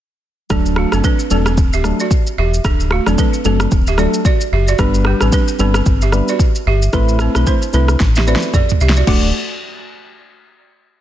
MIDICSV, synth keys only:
0, 0, Header, 1, 2, 480
1, 0, Start_track
1, 0, Tempo, 535714
1, 450, Time_signature, 4, 2, 24, 8
1, 9863, End_track
2, 0, Start_track
2, 0, Title_t, "Synth keys"
2, 0, Program_c, 0, 88
2, 447, Note_on_c, 0, 54, 93
2, 449, Note_on_c, 0, 57, 81
2, 450, Note_on_c, 0, 62, 82
2, 453, Note_on_c, 0, 69, 98
2, 794, Note_off_c, 0, 54, 0
2, 795, Note_off_c, 0, 57, 0
2, 796, Note_off_c, 0, 62, 0
2, 797, Note_off_c, 0, 69, 0
2, 827, Note_on_c, 0, 54, 73
2, 828, Note_on_c, 0, 57, 66
2, 830, Note_on_c, 0, 62, 67
2, 832, Note_on_c, 0, 69, 81
2, 998, Note_off_c, 0, 54, 0
2, 999, Note_off_c, 0, 57, 0
2, 1000, Note_off_c, 0, 62, 0
2, 1001, Note_off_c, 0, 69, 0
2, 1168, Note_on_c, 0, 54, 71
2, 1169, Note_on_c, 0, 57, 69
2, 1172, Note_on_c, 0, 62, 71
2, 1173, Note_on_c, 0, 69, 81
2, 1358, Note_off_c, 0, 54, 0
2, 1359, Note_off_c, 0, 57, 0
2, 1361, Note_off_c, 0, 62, 0
2, 1361, Note_off_c, 0, 69, 0
2, 1649, Note_on_c, 0, 54, 71
2, 1650, Note_on_c, 0, 57, 65
2, 1651, Note_on_c, 0, 62, 66
2, 1654, Note_on_c, 0, 69, 80
2, 1839, Note_off_c, 0, 54, 0
2, 1839, Note_off_c, 0, 57, 0
2, 1840, Note_off_c, 0, 62, 0
2, 1841, Note_off_c, 0, 69, 0
2, 2747, Note_on_c, 0, 54, 72
2, 2749, Note_on_c, 0, 57, 70
2, 2750, Note_on_c, 0, 62, 68
2, 2752, Note_on_c, 0, 69, 82
2, 2918, Note_off_c, 0, 54, 0
2, 2919, Note_off_c, 0, 57, 0
2, 2920, Note_off_c, 0, 62, 0
2, 2921, Note_off_c, 0, 69, 0
2, 3089, Note_on_c, 0, 54, 76
2, 3091, Note_on_c, 0, 57, 72
2, 3092, Note_on_c, 0, 62, 70
2, 3095, Note_on_c, 0, 69, 84
2, 3279, Note_off_c, 0, 54, 0
2, 3280, Note_off_c, 0, 57, 0
2, 3281, Note_off_c, 0, 62, 0
2, 3282, Note_off_c, 0, 69, 0
2, 3569, Note_on_c, 0, 54, 72
2, 3570, Note_on_c, 0, 57, 68
2, 3572, Note_on_c, 0, 62, 68
2, 3575, Note_on_c, 0, 69, 81
2, 3759, Note_off_c, 0, 54, 0
2, 3760, Note_off_c, 0, 57, 0
2, 3761, Note_off_c, 0, 62, 0
2, 3762, Note_off_c, 0, 69, 0
2, 4288, Note_on_c, 0, 55, 94
2, 4289, Note_on_c, 0, 59, 85
2, 4290, Note_on_c, 0, 62, 84
2, 4293, Note_on_c, 0, 71, 100
2, 4635, Note_off_c, 0, 55, 0
2, 4635, Note_off_c, 0, 59, 0
2, 4636, Note_off_c, 0, 62, 0
2, 4637, Note_off_c, 0, 71, 0
2, 4665, Note_on_c, 0, 55, 77
2, 4667, Note_on_c, 0, 59, 67
2, 4669, Note_on_c, 0, 62, 67
2, 4670, Note_on_c, 0, 71, 84
2, 4838, Note_off_c, 0, 55, 0
2, 4838, Note_off_c, 0, 59, 0
2, 4839, Note_off_c, 0, 62, 0
2, 4840, Note_off_c, 0, 71, 0
2, 5008, Note_on_c, 0, 55, 76
2, 5009, Note_on_c, 0, 59, 66
2, 5012, Note_on_c, 0, 62, 69
2, 5014, Note_on_c, 0, 71, 87
2, 5198, Note_off_c, 0, 55, 0
2, 5199, Note_off_c, 0, 59, 0
2, 5201, Note_off_c, 0, 62, 0
2, 5202, Note_off_c, 0, 71, 0
2, 5489, Note_on_c, 0, 55, 71
2, 5491, Note_on_c, 0, 59, 67
2, 5494, Note_on_c, 0, 62, 66
2, 5495, Note_on_c, 0, 71, 77
2, 5679, Note_off_c, 0, 55, 0
2, 5680, Note_off_c, 0, 59, 0
2, 5682, Note_off_c, 0, 62, 0
2, 5682, Note_off_c, 0, 71, 0
2, 6207, Note_on_c, 0, 57, 91
2, 6209, Note_on_c, 0, 60, 81
2, 6211, Note_on_c, 0, 64, 87
2, 6212, Note_on_c, 0, 71, 99
2, 6554, Note_off_c, 0, 57, 0
2, 6555, Note_off_c, 0, 60, 0
2, 6556, Note_off_c, 0, 64, 0
2, 6557, Note_off_c, 0, 71, 0
2, 6588, Note_on_c, 0, 57, 71
2, 6589, Note_on_c, 0, 60, 70
2, 6590, Note_on_c, 0, 64, 65
2, 6593, Note_on_c, 0, 71, 84
2, 6759, Note_off_c, 0, 57, 0
2, 6760, Note_off_c, 0, 60, 0
2, 6760, Note_off_c, 0, 64, 0
2, 6761, Note_off_c, 0, 71, 0
2, 6927, Note_on_c, 0, 57, 73
2, 6930, Note_on_c, 0, 60, 69
2, 6931, Note_on_c, 0, 64, 71
2, 6933, Note_on_c, 0, 71, 85
2, 7118, Note_off_c, 0, 57, 0
2, 7120, Note_off_c, 0, 60, 0
2, 7120, Note_off_c, 0, 64, 0
2, 7121, Note_off_c, 0, 71, 0
2, 7409, Note_on_c, 0, 57, 74
2, 7410, Note_on_c, 0, 60, 65
2, 7412, Note_on_c, 0, 64, 65
2, 7414, Note_on_c, 0, 71, 81
2, 7599, Note_off_c, 0, 57, 0
2, 7599, Note_off_c, 0, 60, 0
2, 7601, Note_off_c, 0, 64, 0
2, 7601, Note_off_c, 0, 71, 0
2, 8125, Note_on_c, 0, 57, 86
2, 8128, Note_on_c, 0, 62, 76
2, 8130, Note_on_c, 0, 66, 78
2, 8134, Note_on_c, 0, 74, 90
2, 8313, Note_off_c, 0, 57, 0
2, 8315, Note_off_c, 0, 62, 0
2, 8316, Note_off_c, 0, 66, 0
2, 8318, Note_off_c, 0, 74, 0
2, 9863, End_track
0, 0, End_of_file